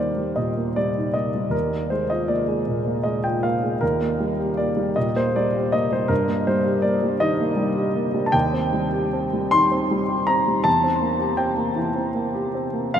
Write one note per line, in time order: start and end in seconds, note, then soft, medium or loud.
0.00 1.48 D#2 soft
0.00 0.17 G3 soft
0.00 0.57 A#3 soft
0.00 0.98 D#4 soft
0.00 1.51 A#4 medium
0.00 1.55 C5 medium
0.00 0.38 D5 medium
0.17 0.50 G3 soft
0.36 0.69 A#2 soft
0.36 0.76 D#5 medium
0.57 0.89 A#3 soft
0.76 1.08 G3 soft
0.76 1.15 D5 medium
0.98 1.28 D#4 soft
1.14 1.46 A#3 soft
1.14 1.53 D#5 medium
1.35 1.54 G3 soft
1.50 3.76 D#2 soft
1.50 1.91 A#4 medium
1.72 2.03 A#3 soft
1.90 2.23 G#3 soft
1.90 2.11 C5 medium
2.10 2.42 F4 soft
2.10 2.30 D#5 medium
2.28 2.60 A#3 soft
2.28 3.05 D5 medium
2.48 2.79 G#3 soft
2.68 2.98 A#2 soft
2.86 3.17 A#3 soft
3.03 3.36 G#3 soft
3.03 3.24 D#5 medium
3.23 3.55 F4 soft
3.23 3.43 G5 medium
3.43 3.74 A#3 soft
3.43 3.82 F5 medium
3.64 3.82 G#3 soft
3.81 6.06 D#2 soft
3.81 4.57 A#4 medium
4.01 4.31 A#3 soft
4.20 4.50 G3 soft
4.39 4.69 G4 soft
4.57 4.89 A#3 soft
4.57 4.96 D5 medium
4.77 5.08 G3 soft
4.96 5.28 A#2 soft
4.96 5.16 D#5 medium
5.16 5.47 A#3 soft
5.16 5.36 C5 medium
5.36 5.67 G3 soft
5.36 5.74 D5 medium
5.56 5.85 G4 soft
5.72 6.03 A#3 soft
5.72 5.91 D#5 medium
5.93 6.11 G3 soft
5.93 6.11 C5 medium
6.08 8.29 G2 soft
6.08 6.46 A#4 medium
6.28 6.58 A#3 soft
6.47 6.77 G3 soft
6.47 6.84 C5 medium
6.65 6.95 G4 soft
6.82 7.14 A#3 soft
6.82 7.20 D5 medium
7.03 7.32 G3 soft
7.20 7.50 D#3 soft
7.20 8.26 D#5 medium
7.40 7.69 A#3 soft
7.57 7.87 G3 soft
7.76 8.06 G4 soft
7.95 8.26 A#3 soft
8.14 8.34 G3 soft
8.26 8.33 A5 medium
8.32 10.62 D#2 soft
8.32 9.54 G5 medium
8.53 8.85 C4 soft
8.73 9.06 G3 soft
8.93 9.26 G4 soft
9.13 9.46 C4 soft
9.33 9.65 G3 soft
9.51 9.84 D#3 soft
9.51 10.28 C6 medium
9.71 10.02 C4 soft
9.91 10.21 G3 soft
10.08 10.39 G4 soft
10.27 10.58 C4 soft
10.27 10.65 A#5 medium
10.48 10.66 G3 soft
10.64 12.90 E2 soft
10.64 11.39 A5 medium
10.84 11.14 C4 soft
11.01 11.32 A#3 soft
11.19 11.51 G4 soft
11.37 11.69 C4 soft
11.37 11.77 G5 medium
11.57 11.89 A#3 soft
11.76 12.07 E3 soft
11.95 12.27 C4 soft
12.15 12.47 A#3 soft
12.35 12.66 G4 soft
12.54 12.86 C4 soft
12.74 12.94 A#3 soft
12.94 13.00 F2 soft
12.94 13.00 F5 medium